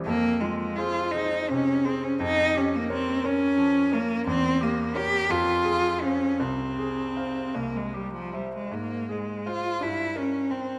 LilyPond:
<<
  \new Staff \with { instrumentName = "Grand piano" } { \time 6/8 \key f \minor \tempo 4. = 56 f,8 f'8 <aes' c''>8 <aes' c''>8 c8 <aes' c''>8 | f,8 g'8 <bes' des''>8 <bes' des''>8 f8 <bes' des''>8 | e,8 g'8 <bes' cis''>8 f,8 aes'8 <c'' f''>8 | c,8 aes'8 <c'' f''>8 c,8 g'8 <c'' e''>8 |
aes,8 aes'8 <c'' f''>8 g,8 bes'8 <c'' g''>8 | }
  \new Staff \with { instrumentName = "Cello" } { \time 6/8 \key f \minor bes8 aes8 f'8 ees'8 des'8 c'16 des'16 | ees'8 des'16 bes16 c'8 des'4 bes8 | c'8 bes8 g'8 f'4 des'8 | c'4. bes16 aes16 g16 f16 g16 aes16 |
bes8 aes8 f'8 e'8 des'8 c'8 | }
>>